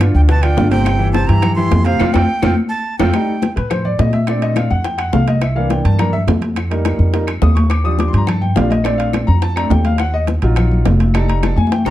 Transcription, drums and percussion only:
0.00 high bongo medium
0.00 high conga medium
0.00 high timbale loud
0.00 low timbale medium
0.00 claves medium
0.15 high bongo soft
0.15 high conga soft
0.28 high bongo medium
0.28 high conga soft
0.28 high timbale medium
0.43 high bongo soft
0.43 high conga soft
0.43 high timbale loud
0.43 claves medium
0.57 high bongo medium
0.57 low bongo medium
0.57 high conga medium
0.57 low timbale medium
0.71 high bongo soft
0.71 high conga medium
0.71 high timbale medium
0.85 high bongo medium
0.85 high conga soft
0.85 high timbale medium
0.85 claves medium
0.99 high conga soft
1.13 high bongo medium
1.13 high conga medium
1.13 high timbale medium
1.13 low timbale medium
1.27 high conga soft
1.27 high timbale medium
1.42 high bongo medium
1.42 high conga soft
1.42 low conga medium
1.42 high timbale medium
1.42 claves medium
1.57 high conga soft
1.57 low conga medium
1.71 high bongo medium
1.71 low bongo medium
1.71 high conga medium
1.71 high timbale medium
1.71 low timbale medium
1.85 high conga medium
1.85 high timbale medium
2.00 high bongo medium
2.00 high conga medium
2.00 high timbale medium
2.00 claves loud
2.14 high bongo medium
2.14 high conga medium
2.14 high timbale loud
2.14 claves medium
2.43 high bongo loud
2.43 high conga loud
2.43 high timbale medium
2.43 claves medium
2.99 high bongo loud
2.99 high conga loud
2.99 high timbale loud
2.99 claves medium
3.14 high bongo medium
3.14 high conga soft
3.14 high timbale medium
3.14 claves medium
3.28 high conga soft
3.42 high bongo medium
3.42 high conga medium
3.42 high timbale medium
3.42 low timbale medium
3.56 high conga soft
3.56 high timbale medium
3.70 high bongo medium
3.70 high conga soft
3.70 low conga medium
3.70 high timbale medium
3.70 claves medium
3.85 high conga soft
3.85 low conga medium
3.99 high bongo medium
3.99 low bongo medium
3.99 high conga medium
3.99 high timbale medium
3.99 low timbale medium
4.13 high conga medium
4.13 high timbale medium
4.27 high bongo medium
4.27 high conga soft
4.27 high timbale medium
4.27 claves medium
4.42 high conga soft
4.42 high timbale medium
4.56 high bongo medium
4.56 high conga medium
4.56 high timbale medium
4.56 low timbale medium
4.56 claves medium
4.70 high bongo soft
4.70 high conga soft
4.84 high bongo medium
4.84 high conga soft
4.84 high timbale medium
4.99 high bongo soft
4.99 high conga soft
4.99 high timbale medium
4.99 claves medium
5.13 high bongo medium
5.13 low bongo medium
5.13 high conga medium
5.13 low timbale medium
5.28 high bongo soft
5.28 high conga medium
5.28 high timbale medium
5.42 high bongo medium
5.42 high conga soft
5.42 high timbale medium
5.42 claves medium
5.56 high conga soft
5.70 high bongo medium
5.70 high conga medium
5.70 high timbale medium
5.70 low timbale medium
5.85 high conga soft
5.85 high timbale medium
5.99 high bongo medium
5.99 high conga soft
5.99 low conga medium
5.99 high timbale medium
5.99 claves medium
6.13 high conga soft
6.13 low conga medium
6.28 high bongo medium
6.28 low bongo medium
6.28 high conga medium
6.28 high timbale medium
6.28 low timbale medium
6.42 high conga medium
6.42 high timbale medium
6.56 high bongo medium
6.56 high conga soft
6.56 high timbale medium
6.56 claves medium
6.71 high conga soft
6.71 high timbale medium
6.85 high bongo medium
6.85 high conga medium
6.85 high timbale loud
6.85 low timbale medium
6.85 claves medium
6.99 high bongo soft
6.99 high conga soft
7.13 high bongo medium
7.13 high conga soft
7.13 high timbale medium
7.27 high bongo soft
7.27 high conga soft
7.27 high timbale medium
7.27 claves medium
7.42 high bongo medium
7.42 low bongo medium
7.42 high conga medium
7.42 low timbale medium
7.56 high bongo soft
7.56 high conga medium
7.56 high timbale medium
7.70 high bongo medium
7.70 high conga soft
7.70 high timbale medium
7.70 claves medium
7.85 high conga soft
7.99 high bongo medium
7.99 high conga medium
7.99 high timbale medium
7.99 low timbale medium
8.14 high conga soft
8.14 high timbale medium
8.27 high bongo medium
8.27 high conga soft
8.27 low conga medium
8.27 high timbale medium
8.27 claves medium
8.42 high conga soft
8.42 low conga medium
8.56 high bongo medium
8.56 low bongo medium
8.56 high conga medium
8.56 high timbale medium
8.56 low timbale medium
8.71 high conga loud
8.71 high timbale medium
8.84 high bongo medium
8.84 high timbale medium
8.84 claves medium
9.00 high conga soft
9.00 high timbale medium
9.13 high bongo medium
9.13 high conga medium
9.13 high timbale medium
9.13 low timbale medium
9.13 claves medium
9.28 high bongo soft
9.28 high conga soft
9.42 high bongo medium
9.42 high conga soft
9.42 high timbale medium
9.56 high bongo soft
9.56 high conga soft
9.56 high timbale loud
9.56 claves medium
9.70 high bongo medium
9.70 low bongo medium
9.70 high conga loud
9.70 low timbale medium
9.85 high bongo soft
9.85 high conga medium
9.85 high timbale medium
9.98 high bongo medium
9.98 high conga soft
9.98 high timbale medium
9.98 claves medium
10.14 high conga soft
10.27 high bongo medium
10.27 high conga medium
10.27 high timbale medium
10.27 low timbale medium
10.42 high conga soft
10.42 high timbale medium
10.56 high bongo medium
10.56 high conga soft
10.56 low conga medium
10.56 high timbale medium
10.56 claves medium
10.71 high conga soft
10.71 low conga medium
10.85 high bongo medium
10.85 low bongo medium
10.85 high conga medium
10.85 high timbale medium
10.85 low timbale medium
11.00 high conga medium
11.00 high timbale medium
11.14 high bongo medium
11.14 high conga soft
11.14 high timbale medium
11.14 claves medium
11.28 high conga soft
11.28 high timbale medium
11.43 high bongo medium
11.43 high conga medium
11.43 high timbale loud
11.43 low timbale medium
11.43 claves medium
11.58 high bongo soft
11.58 high conga medium
11.67 high conga loud
11.72 high bongo medium
11.72 high timbale medium
11.76 high conga medium
11.85 high bongo medium
11.85 high conga loud
11.85 high timbale medium
11.85 claves medium

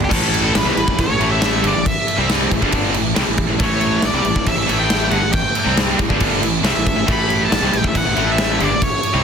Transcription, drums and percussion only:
0.01 floor tom medium
0.11 kick loud
0.11 crash loud
0.11 crash medium
0.34 crash medium
0.55 snare loud
0.55 crash medium
0.77 crash medium
0.88 kick medium
0.99 kick loud
0.99 crash medium
1.21 crash medium
1.42 snare loud
1.42 crash medium
1.64 crash medium
1.86 kick loud
1.86 crash loud
2.08 crash medium
2.29 snare loud
2.29 crash medium
2.51 kick medium
2.51 crash medium
2.62 kick medium
2.72 kick loud
2.72 crash medium
2.94 crash medium
3.16 snare loud
3.16 crash medium
3.38 kick medium
3.38 crash medium
3.60 kick loud
3.60 crash loud
3.81 crash medium
4.02 snare loud
4.02 crash medium
4.25 crash medium
4.36 kick medium
4.46 kick loud
4.46 crash loud
4.69 crash medium
4.90 snare loud
4.90 crash medium
5.11 crash medium
5.33 kick loud
5.33 crash medium
5.55 crash medium
5.77 snare loud
5.77 crash medium
5.99 kick medium
5.99 crash medium
6.10 kick medium
6.20 kick loud
6.20 crash loud
6.43 crash medium
6.64 snare loud
6.64 crash medium
6.86 kick medium
6.86 crash medium
7.08 kick loud
7.08 crash medium
7.30 crash medium
7.52 snare loud
7.52 crash medium
7.73 crash medium
7.84 kick medium
7.95 kick medium
7.95 crash medium
8.16 crash medium
8.38 snare loud
8.38 crash medium
8.60 crash medium
8.82 kick loud
8.82 crash medium
9.03 crash medium

